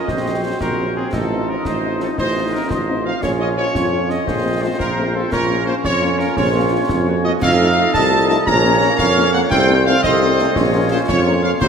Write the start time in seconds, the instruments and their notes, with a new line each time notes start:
Already playing: trumpet section D#5
0.07 tuba A#1, trombone section F#3 C4, woodwind section F#4 C5, concert bass drum, snare
0.26 french horn section F#3 C4
0.43 french horn section F#3 C4, trumpet section C5
0.60 tuba A#1, woodwind section F#4 C5, trumpet section A#4, concert bass drum, snare
0.79 french horn section F#3 C4
0.96 french horn section F#3 C4, trumpet section G#4
1.13 tuba A1, trombone section F3 D#4, woodwind section F4 D#5, trumpet section A4, concert bass drum, snare, crash
1.31 french horn section F3 C4 D#4
1.49 french horn section F3 C4 D#4, trumpet section A#4
1.65 tuba A1, woodwind section F4 D#5, trumpet section C5, concert bass drum, snare
1.83 french horn section F3 C4 D#4
2.00 french horn section F3 C4 D#4, trumpet section A4, snare
2.18 tuba A1, woodwind section F4 D#5, trumpet section C5, concert bass drum, snare
2.36 french horn section F3 C4 D#4
2.53 french horn section F3 C4 D#4, trumpet section A#4
2.70 tuba A1, woodwind section F4 D#5, trumpet section C5, concert bass drum, snare
2.89 french horn section F3 C4 D#4
3.05 french horn section F3 C4 D#4, trumpet section F5
3.22 tuba A#1, trombone section F3 C#4, woodwind section F4 C#5, trumpet section C#5, concert bass drum, snare, crash
3.40 french horn section F3 C#4 F4, trumpet section D#5
3.57 french horn section F3 C#4 F4, trumpet section C#5
3.75 tuba F2, concert bass drum, snare
3.92 french horn section F3 C#4 F4
4.10 french horn section F3 C#4 F4, trumpet section D#5, snare
4.27 tuba A#1, trombone section C4, woodwind section F4 C5, concert bass drum, snare
4.45 french horn section A3 C4 F4
4.63 french horn section A3 C4 F4, trumpet section C5
4.79 tuba A#1, trumpet section A#4, concert bass drum, snare
4.98 french horn section A3 C4 F4
5.15 french horn section A3 C4 F4, trumpet section A4
5.32 tuba A#1, trombone section F3 C#4, woodwind section F4 C#5, trumpet section A#4, concert bass drum, snare, crash
5.50 french horn section A#3 C#4 F4
5.66 french horn section A#3 C#4 F4, trumpet section C5
5.84 tuba F2, woodwind section F4 C#5, trumpet section C#5, concert bass drum, snare
6.02 french horn section A#3 C#4 F4
6.19 french horn section A#3 C#4 F4, trumpet section A#4, snare
6.37 tuba A#1, woodwind section F4 C#5, trumpet section C#5, concert bass drum, snare
6.55 french horn section A#3 C#4 F4
6.72 french horn section A#3 C#4 F4
6.89 tuba F2, concert bass drum, snare
7.07 french horn section A#3 C#4 F4, woodwind section F#4
7.24 french horn section A#3 C#4 F4, trumpet section D#5
7.41 tuba F2, trombone section A3 D#4, woodwind section A4 D#5, trumpet section F5, concert bass drum, snare, crash
7.60 french horn section A3 D#4 F4
7.77 french horn section A3 D#4 F4
7.94 tuba C2, woodwind section A4 D#5, trumpet section A5, concert bass drum, snare
8.12 french horn section A3 D#4 F4
8.29 french horn section A3 D#4 F4, trumpet section A5, snare
8.46 tuba A#1, trombone section A#3 C#4, woodwind section A#4 C#5, trumpet section A#5, concert bass drum, snare
8.64 french horn section A#3 C#4 F4
8.82 french horn section A#3 C#4 F4
8.98 tuba F2, woodwind section A#4 C#5, trumpet section F5, concert bass drum, snare
9.17 french horn section A#3 C#4 F4
9.33 french horn section A#3 C#4 F4, trumpet section F#5
9.50 tuba C2, trombone section A3 C4, woodwind section A4 C5, trumpet section G5, concert bass drum, snare, crash
9.69 french horn section A3 C4 D#4
9.86 french horn section A3 C4 D#4, trumpet section F5
10.03 tuba C2, woodwind section A4 C5, trumpet section D#5, concert bass drum, snare
10.22 french horn section A3 C4 D#4
10.39 french horn section A3 C4 D#4, snare
10.56 tuba A#1, trombone section F3 C#4, woodwind section F4 C#5, concert bass drum, snare
10.74 french horn section A#3 C#4 F4
10.91 french horn section A#3 C#4 F4, trumpet section C5
11.08 tuba F2, woodwind section F4 C#5, trumpet section C#5, concert bass drum, snare
11.26 french horn section A#3 C#4 F4
11.43 french horn section A#3 C#4 F4, trumpet section F5
11.61 tuba D#2, trombone section F#3 D#4, woodwind section F#4 C5, trumpet section C5, concert bass drum, snare, crash